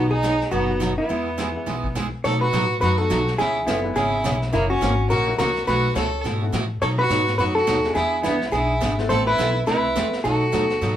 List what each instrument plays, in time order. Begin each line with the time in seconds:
Already playing: upright bass B1, steel-string acoustic guitar B2 F#3 B3 D#4 F#4, upright piano F#3 B3 D#4
0.11 fiddle D#4, hollow-body jazz guitar G#4
0.23 steel-string acoustic guitar B2 F#3 B3 D#4 F#4, snare, hi-hat pedal
0.41 snare
0.51 upright bass F#1, steel-string acoustic guitar B2 F#3 B3 D#4 F#4, fiddle B3, hollow-body jazz guitar F#4, brush sweep
0.68 upright piano D#3 F#3 B3 F#4
0.80 steel-string acoustic guitar B2 F#3 B3 D#4 F#4, snare, hi-hat pedal
0.98 fiddle B3, hollow-body jazz guitar E4
1.09 upright bass E2, steel-string acoustic guitar E3 G#3 B3 E4 G#4, upright piano E3 G#3 B3 E4, brush sweep
1.38 steel-string acoustic guitar E3 G#3 B3 E4 G#4, snare, hi-hat pedal
1.55 upright piano E3 G#3 B3 E4
1.66 upright bass B1, steel-string acoustic guitar E3 G#3 B3 E4 G#4, brush sweep, snare
1.84 kick
1.95 steel-string acoustic guitar E3 G#3 B3 E4 G#4, snare, hi-hat pedal
2.24 steel-string acoustic guitar B2 F#3 A3 D#4 F#4, upright bass B2, fiddle A4, hollow-body jazz guitar C#5, brush sweep, snare
2.41 fiddle F#4, hollow-body jazz guitar B4
2.53 upright bass A2, steel-string acoustic guitar B2 F#3 A3 D#4 F#4, snare, hi-hat pedal
2.81 upright bass F#2, steel-string acoustic guitar B2 F#3 A3 D#4 F#4, fiddle F#4, hollow-body jazz guitar B4, brush sweep, snare
2.98 upright piano F#3 A3 B3 D#4 F#4, fiddle F#4, hollow-body jazz guitar A4
3.10 upright bass B1, steel-string acoustic guitar B2 F#3 A3 D#4 F#4, snare, hi-hat pedal
3.27 snare
3.38 upright bass C#2, steel-string acoustic guitar C#3 E3 B3 C#4 G#4, fiddle E4, hollow-body jazz guitar G#4, brush sweep, snare
3.67 upright bass F#1, steel-string acoustic guitar C#3 E3 B3 C#4 G#4, upright piano A3 C4 D4 F4 A4, fiddle B3, hollow-body jazz guitar E4, snare, hi-hat pedal
3.84 upright piano G#3 B3 C#4 E4 G#4
3.95 upright bass G#1, steel-string acoustic guitar C#3 E3 B3 C#4 G#4, fiddle E4, hollow-body jazz guitar G#4, brush sweep, snare
4.24 upright bass B1, steel-string acoustic guitar C#3 E3 B3 C#4 G#4, snare, hi-hat pedal
4.42 snare
4.52 upright bass F#1, steel-string acoustic guitar C#3 E3 A#3 C#4 F#4, fiddle A#3, hollow-body jazz guitar E4, brush sweep, snare
4.70 fiddle C#4, hollow-body jazz guitar F#4
4.81 upright bass G#1, steel-string acoustic guitar C#3 E3 A#3 C#4 F#4, snare, hi-hat pedal
5.10 upright bass A#1, steel-string acoustic guitar C#3 E3 A#3 C#4 F#4, fiddle F#4, hollow-body jazz guitar A#4, brush sweep, snare
5.27 upright piano F#3 A#3 C#4 E4 F#4
5.38 upright bass C#2, steel-string acoustic guitar C#3 E3 A#3 C#4 F#4, fiddle F#4, hollow-body jazz guitar A#4, snare, hi-hat pedal
5.56 snare
5.67 upright bass B1, steel-string acoustic guitar B2 E3 A3 E4 F#4, fiddle F#4, hollow-body jazz guitar B4, brush sweep, snare
5.95 upright bass C#2, steel-string acoustic guitar B2 E3 A3 E4 F#4, fiddle A4, hollow-body jazz guitar C#5, snare, hi-hat pedal
6.24 upright bass G#2, steel-string acoustic guitar B2 E3 A3 E4 F#4, brush sweep, snare
6.41 upright piano A3 B3 C#4 E4 F#4
6.52 upright bass A2, steel-string acoustic guitar B2 E3 A3 E4 F#4, snare, hi-hat pedal
6.81 steel-string acoustic guitar B2 F#3 A3 D#4 F#4, upright bass B2, fiddle A4, hollow-body jazz guitar C#5, brush sweep, snare
6.99 fiddle F#4, hollow-body jazz guitar B4
7.10 upright bass G#2, steel-string acoustic guitar B2 F#3 A3 D#4 F#4, snare, hi-hat pedal
7.27 snare
7.38 upright bass F#2, steel-string acoustic guitar B2 F#3 A3 D#4 F#4, fiddle F#4, hollow-body jazz guitar B4, brush sweep, snare
7.55 fiddle F#4, hollow-body jazz guitar A4
7.67 upright bass D#2, steel-string acoustic guitar B2 F#3 A3 D#4 F#4, snare, hi-hat pedal
7.84 upright piano G#3 B3 D4 E4 G#4, snare
7.95 upright bass E2, steel-string acoustic guitar E3 B3 D4 G#4, fiddle E4, hollow-body jazz guitar G#4, brush sweep, snare
8.23 upright bass C#2, steel-string acoustic guitar E3 B3 D4 G#4, fiddle B3, hollow-body jazz guitar E4, snare, hi-hat pedal
8.41 snare
8.52 upright bass B1, steel-string acoustic guitar E3 B3 D4 G#4, fiddle E4, hollow-body jazz guitar G#4, brush sweep, snare
8.81 upright bass G#1, steel-string acoustic guitar E3 B3 D4 G#4, snare, hi-hat pedal
8.98 upright piano A3 B3 C4 E4 A4, snare
9.09 upright bass A1, steel-string acoustic guitar E3 A3 C4 E4 B4, fiddle A4, hollow-body jazz guitar C5, brush sweep, snare
9.27 fiddle E4, hollow-body jazz guitar B4
9.38 upright bass B1, steel-string acoustic guitar E3 A3 C4 E4 B4, upright piano A3 B3 C4 E4 A4, snare, hi-hat pedal
9.66 upright bass C2, steel-string acoustic guitar E3 A3 C4 E4 B4, fiddle E4, hollow-body jazz guitar B4, brush sweep, snare
9.95 upright bass E2, steel-string acoustic guitar E3 A3 C4 E4 B4, upright piano A3 B3 C4 E4 A4, snare, hi-hat pedal
10.13 muted upright bass stroke, snare
10.24 upright bass B1, steel-string acoustic guitar B2 F#3 A3 D#4 F#4, fiddle F#4, hollow-body jazz guitar A4, brush sweep, snare
10.52 upright bass D#2, steel-string acoustic guitar B2 F#3 A3 D#4 F#4, upright piano A3 B3 D#4 F#4 A4, snare, hi-hat pedal
10.70 snare
10.81 upright bass G#2, steel-string acoustic guitar B2 F#3 A3 D#4 F#4, brush sweep, snare